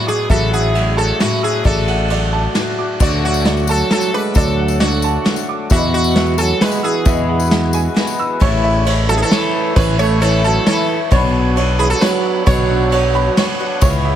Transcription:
Already playing: A2 D3 F#3 A3 B3 F#4 D5 B5
0.07 F#4 G#4 D6
0.29 A1 A2 E3 F#3 A3 C#4 E4 F#4 A4 E5, kick, ride
0.52 G#4 F#5
0.74 E3 F#3 A3 C#4 F#4 E5, ride
0.97 A3 C#4 F#4 A4 A5
1.19 A2 E3 A3 C#4 F#4, snare, ride
1.41 A3 C#4 F#4 G#4 E6
1.64 A1 A2 D3 A3 D4 F#4 A4 D5, kick, ride
1.88 F#5, ride
2.09 D3 F#3 A3 D4 F#4 D5, ride
2.33 A5
2.54 A2 D3 A3 D4 F#4, snare, ride
2.79 F#4 D6
3.00 D2 D3 F#3 A3 D4 F#4 D5, kick, crash, tambourine
3.24 D3 F#4 F#5
3.34 tambourine
3.44 D3 A3 D4 F#4 D5, snare, closed hi-hat
3.57 tambourine
3.67 F#3 A3 D4 F#4 A4 A5, tambourine
3.89 D3 F#3 A3 D4 F#4 A4, snare, closed hi-hat
4.01 tambourine
4.12 G#3 A3 D4 F#4 B4 D6
4.34 D2 D3 F#3 A3 D4 F#4 A4 D5, kick, closed hi-hat, tambourine
4.59 F#5
4.68 tambourine
4.79 D3 A3 D4 F#4 D5, snare, closed hi-hat
4.91 tambourine
5.02 A5, tambourine
5.24 D3 A3 D4 F#4, snare, closed hi-hat
5.36 tambourine
5.49 D6
5.70 E2 B2 E3 G#3 B3 F#4 E5, kick, closed hi-hat, tambourine
5.94 B2 F#4 F#5
6.04 tambourine
6.14 E3 G#3 B3 F#4 E5, snare, closed hi-hat
6.27 tambourine
6.38 E3 F#3 G#3 B3 F#4 A4 G#5, tambourine
6.61 E3 G#3 B3 F#4 B4, snare, closed hi-hat
6.72 tambourine
6.83 E3 G#4 E6
7.05 E2 B2 E3 G#3 B3 F#4 E5, kick, closed hi-hat, tambourine
7.17 tambourine
7.29 F#5
7.40 tambourine
7.50 E3 G#3 B3 F#4 E5, snare, closed hi-hat
7.73 G#5, tambourine
7.94 E3 G#3 B3 F#4, snare, closed hi-hat
8.07 tambourine
8.19 E6, tambourine
8.40 A1 A2 E3 A3 C#4 E4 C#5, kick, ride
8.64 E5
8.86 A3 C#4 E4 C#5, ride
9.07 F#3 A3 C#4 E4 A4 A5
9.16 E3 G#4
9.22 E3 A4
9.31 E3 A3 C#4 E4 C#5, snare, ride
9.76 A1 A2 E3 A3 C#4 E4 B4 C#5, kick, ride
9.99 A3 C#5 E5
10.20 E3 A3 C#4 E4 A4 C#5, ride
10.43 F#3 A3 C#4 E4 A4 A5
10.66 E3 A3 C#4 E4 A4 C#5, snare, ride
10.88 A3 C#4 E4
11.11 B1 B2 F#3 B3 D4 F#4 C#5, kick, ride
11.56 B3 D4 F#4 C#5, ride
11.79 E3 G#4 B5
11.90 F#3 A4
12.01 F#3 B3 D4 F#4 B4 C#5, snare, ride
12.46 B1 B2 F#3 B3 D4 F#4 C#5, kick, ride
12.70 D4
12.91 B3 D4 F#4 C#5, ride
13.14 B3 D4 F#4 C#5 B5
13.37 B3 D4 F#4 C#5, snare, ride
13.59 B3 D4 F#4 C#5
13.81 C#2 C#3 E3 G#3 B3 C#4 E4 G#4 C#5, kick, ride, tambourine
14.05 E5

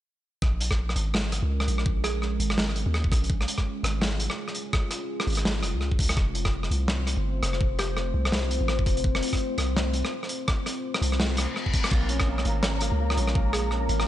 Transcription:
0.42 A#1 G#3 C#4 F4 A#4, kick, cross-stick
0.61 closed hi-hat
0.71 kick, cross-stick
0.89 cross-stick
0.96 G#1, closed hi-hat
1.14 cross-stick, snare
1.32 cross-stick, closed hi-hat
1.43 C#2
1.60 cross-stick
1.68 A#1, closed hi-hat
1.78 cross-stick
1.86 kick
2.04 G#4, cross-stick, closed hi-hat
2.22 cross-stick
2.40 G#1, closed hi-hat
2.50 cross-stick
2.58 snare
2.69 cross-stick
2.76 closed hi-hat
2.86 D#2
2.94 cross-stick
3.04 kick
3.12 A#1, kick, cross-stick, closed hi-hat
3.24 closed hi-hat
3.29 G#4, kick
3.41 cross-stick
3.48 closed hi-hat
3.58 kick, cross-stick
3.83 G#1, cross-stick, closed hi-hat
4.01 cross-stick, snare
4.20 closed hi-hat
4.30 cross-stick
4.48 cross-stick
4.55 closed hi-hat
4.73 kick, cross-stick
4.91 cross-stick, closed hi-hat
5.20 cross-stick
5.27 G#1, closed hi-hat
5.30 closed hi-hat
5.33 closed hi-hat
5.35 cross-stick, closed hi-hat
5.45 snare
5.63 F1, cross-stick, closed hi-hat
5.74 C#2
5.81 cross-stick
5.92 kick
5.99 kick, closed hi-hat
6.03 closed hi-hat
6.05 closed hi-hat
6.08 cross-stick, closed hi-hat
6.10 closed hi-hat
6.12 closed hi-hat
6.14 closed hi-hat
6.16 F1 A3 C4 C5, kick, cross-stick, closed hi-hat
6.35 closed hi-hat
6.45 kick, cross-stick
6.63 cross-stick
6.71 C2, closed hi-hat
6.88 cross-stick, snare
7.07 cross-stick, closed hi-hat
7.17 G1
7.43 F1, cross-stick, closed hi-hat
7.53 cross-stick
7.61 kick
7.79 G4, cross-stick, closed hi-hat
7.97 cross-stick
8.14 C2
8.25 cross-stick
8.32 snare
8.43 cross-stick
8.51 closed hi-hat
8.61 A1
8.68 cross-stick
8.79 kick
8.86 F1, kick, closed hi-hat
8.97 closed hi-hat
9.04 kick
9.15 cross-stick
9.22 closed hi-hat
9.28 closed hi-hat
9.33 kick, cross-stick, closed hi-hat
9.37 closed hi-hat
9.58 C2, cross-stick, closed hi-hat
9.77 cross-stick, snare
9.93 closed hi-hat
10.05 cross-stick
10.23 cross-stick
10.29 closed hi-hat
10.48 kick, cross-stick
10.66 cross-stick, closed hi-hat
10.94 cross-stick
11.02 C2, closed hi-hat
11.12 cross-stick
11.20 snare, reverse cymbal
11.37 cross-stick, closed hi-hat
11.56 cross-stick
11.66 kick
11.73 kick, closed hi-hat
11.84 cross-stick, closed hi-hat
11.91 A#1 G#3 A#3 C#4 F4 A#4 A#5, kick, cross-stick, crash
12.09 C#4, closed hi-hat
12.20 kick, cross-stick
12.27 A#3
12.38 cross-stick
12.45 G#1 A#3, closed hi-hat
12.63 C#4, cross-stick, snare
12.81 A#3, cross-stick, closed hi-hat
12.92 C#2
13.00 A#3
13.10 cross-stick
13.17 A#1 C#4, closed hi-hat
13.28 cross-stick
13.35 A#3, kick
13.53 A#3 G#4, cross-stick, closed hi-hat
13.71 C#4, cross-stick
13.89 G#1 A#3, closed hi-hat
14.00 cross-stick

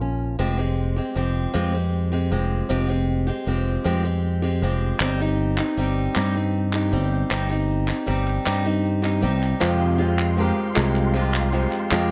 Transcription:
Already playing: A#1 A#2 F3 F4 A#4
0.01 C#4
0.39 F1 F3 G#3 C4 G4
0.57 G#3 C4 G4
0.96 G#3 C4 G4
1.15 F1 F3 G#3 C4 G4
1.54 F2 F3 G#3 C4 G4
1.73 G#3 C4 G4
2.12 G#3 C4 G4
2.31 F1 F3 G#3 C4 G4
2.69 F1 F3 G#3 C4 G4
2.88 G#3 C4 G4
3.27 G#3 C4 G4
3.47 F1 F3 G#3 C4 G4
3.84 F2 F3 G#3 C4 G4
4.04 G#3 C4 G4
4.42 G#3 C4 G4
4.62 F1 F3 G#3 C4 G4
5.00 G1 G3 C4 D#4 G4, clap, tambourine
5.20 C4 D#4 G4
5.39 tambourine
5.58 C4 D#4 G4, clap, tambourine
5.77 G1 G3 C4 D#4 G4
6.16 G2 G3 C4 D#4 G4, clap, tambourine
6.35 C4 D#4 G4
6.73 C4 D#4 G4, clap, tambourine
6.92 G1 G3 C4 D#4 G4
7.12 tambourine
7.30 G1 G3 C4 D#4 G4, clap, tambourine
7.50 C4 D#4 G4, clap
7.88 C4 D#4 G4, clap, tambourine
8.06 G1 G3 C4 D#4 G4, clap, tambourine
8.27 clap
8.45 G2 G3 C4 D#4 G4, clap, tambourine
8.64 C4 D#4 G4
8.85 tambourine
9.02 C4 D#4 G4, clap, tambourine
9.21 C2 G3 C4 D#4 G4, tambourine
9.42 clap, tambourine
9.60 F1 F2 C3 F3 G#3 C4 F4 G4 C5 F5 G5 C6, clap, tambourine
9.98 F3 G#3 C4 F4 G4 C5, tambourine
10.19 clap, tambourine
10.37 F3 G#3 C4 F4 G4 A#4, tambourine
10.57 tambourine
10.75 C2 F2 C3 F3 G#3 C4 F4 G4 A#4, clap, tambourine
10.95 clap
11.14 F3 G#3 C4 F4 G4 C5, clap, tambourine
11.34 clap, tambourine
11.52 F3 G#3 C4 F4 G4 C5
11.72 clap, tambourine
11.91 F1 F2 C3 F3 G#3 C4 F4 G4 D#5, clap, tambourine

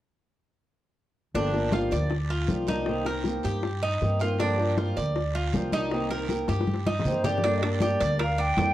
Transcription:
1.34 G1 D3 F3 A#3 D4 G4, high bongo, high conga, long guiro
1.54 F3 A#3 D4 G4, high bongo, high conga
1.72 F3 A#3 D4 F4 G4, high bongo, high conga, short guiro
1.91 D2 D5, high bongo, high conga, short guiro
2.10 muted nylon-string guitar stroke, high bongo, high conga, long guiro
2.30 F4, high conga
2.48 C2 F3 A#3 D4 G4, high bongo, low bongo, high conga, short guiro
2.67 F3 A#3 D4 D#4 G4, high bongo, high conga, short guiro
2.86 C3 D#3 A#3 C4 G4, high bongo, high conga, long guiro
3.05 D#3 A#3 C4 G4 A#4, high bongo, high conga
3.24 D#3 A#3 C4 G4, high bongo, high conga, short guiro
3.43 G2 G4, high bongo, high conga, short guiro
3.63 muted nylon-string guitar stroke, high bongo, high conga, long guiro
3.82 D#4, high conga
4.01 G2 D#3 A#3 C4 G4, high bongo, low bongo, high conga, short guiro
4.19 D#3 A#3 C4 F4 G4, high bongo, short guiro
4.38 D3 F3 A#3 D4 G4, high bongo, high conga, long guiro
4.58 F3 A#3 D4 G4, high bongo, high conga
4.77 F3 A#3 D4 F4 G4, high bongo, high conga, short guiro
4.96 D2 D5, high bongo, high conga, short guiro
5.16 muted nylon-string guitar stroke, high bongo, high conga, long guiro
5.35 F4, high conga
5.53 C2 F3 A#3 D4 G4, high bongo, low bongo, high conga, short guiro
5.72 F3 A#3 D4 D#4 G4, high bongo, high conga, short guiro
5.92 C3 D#3 A#3 C4 G4, high bongo, high conga, long guiro
6.10 D#3 A#3 C4 G4 A#4, high bongo, high conga
6.29 D#3 A#3 C4 G4, high bongo, high conga, short guiro
6.48 G2 G4, high bongo, high conga, short guiro
6.61 high bongo
6.67 muted nylon-string guitar stroke, high conga, long guiro
6.74 high bongo
6.87 D#4, high bongo, high conga
6.99 low bongo
7.05 G2 D#3 A#3 C4 G4 C5, low conga, short guiro
7.12 low bongo
7.24 D#3 A#3 C4 G4 D5, low bongo, low conga, short guiro
7.38 low bongo
7.43 D3 G3 A#3 D4 G4, high bongo, high conga, high timbale, long guiro
7.57 D#5
7.62 G3 A#3 D4 G4 D5, high bongo, high conga, high timbale
7.80 G3 A#3 D4 G4, high bongo, high conga, short guiro
8.00 D2 D5, high bongo, high conga, high timbale, short guiro
8.19 A#4 F5, muted nylon-string guitar stroke, high bongo, high conga, high timbale, long guiro
8.38 D4 G5, high conga
8.57 F2 G3 A#3 D4 G4, high bongo, low bongo, high conga, high timbale, low timbale, short guiro

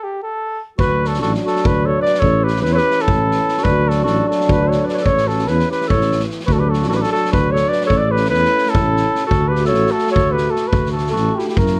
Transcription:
0.04 G4
0.23 A4
0.78 D2 F#3 D4 F#4 B4, kick
1.02 F#4, snare
1.07 A4
1.14 snare
1.22 A1 F#4 A4, snare
1.34 snare
1.45 F#4 A4, snare
1.56 snare
1.62 D2 F#4, kick
1.67 B4
1.85 A4 C#5
2.00 B4 D5
2.05 snare
2.14 snare
2.19 A1 E3 C#4 A4 C#5, kick
2.44 G4 B4, snare
2.56 snare
2.62 E2 E4 B4, snare
2.73 A4 B4 C#5
2.77 G4, snare
2.91 snare
2.99 A4, snare
3.03 E4
3.08 A1, kick
3.31 snare
3.48 snare
3.57 F#4, snare
3.63 D2 F#3 D4 B4, kick
3.86 F#4 A4
3.90 snare
4.04 F#4 A4, snare
4.08 A1
4.27 F#4 A4, snare
4.40 snare
4.46 D2 F#4, kick
4.51 B4
4.63 A4 B4
4.68 C#5 D5, snare
4.83 B4 D5
4.88 A4 B4, snare
4.93 C#5 D5, snare
5.01 C#4 A4 C#5
5.05 A1 E3, kick
5.17 snare
5.25 F#4 A4
5.29 snare
5.38 snare
5.45 E4 B4, snare
5.50 E2
5.59 snare
5.70 G4 B4, snare
5.81 snare
5.87 A4 C#5, kick
5.92 A1
6.01 snare
6.12 snare
6.20 snare
6.30 snare
6.40 snare
6.46 D2 F#3 D4 F#4 B4, kick
6.53 F#4 A4
6.59 G4 B4
6.70 F#4 A4, snare
6.82 snare
6.89 A1 F#4 A4, snare
6.94 G4 B4
7.01 F#4 A4, snare
7.12 F#4 A4, snare
7.25 snare
7.31 D2 F#4 B4, kick
7.52 A4 C#5, snare
7.69 B4 D5, snare
7.81 snare
7.86 A3 A4 C#5
7.90 A1 C#4, kick
7.97 A4 B4 D5
8.10 G4 B4
8.16 snare
8.25 snare
8.29 E4 B4
8.33 E2, snare
8.45 snare
8.57 snare
8.66 E4 A4, snare
8.75 A1, kick
8.96 snare
9.15 snare
9.26 A3 F#4 A4
9.31 D2, kick
9.48 G4 B4
9.55 snare
9.65 A4 C#5, snare
9.74 A1, snare
9.86 snare
9.91 F#4 A4
9.98 snare
10.07 snare
10.11 A4 C#5
10.16 D2, kick
10.32 G4 B4
10.37 snare
10.51 F#4 A4
10.56 snare
10.68 A3 F#4 B4
10.72 D2 F#4, kick
10.86 snare
10.92 A4
10.96 F#4, snare
11.07 snare
11.11 F#4 A4
11.16 A1, snare
11.36 E4 G4, snare
11.44 D4 E4 G4
11.48 snare
11.57 F#2 A#3 E4 F#4 A#4, kick
11.66 snare

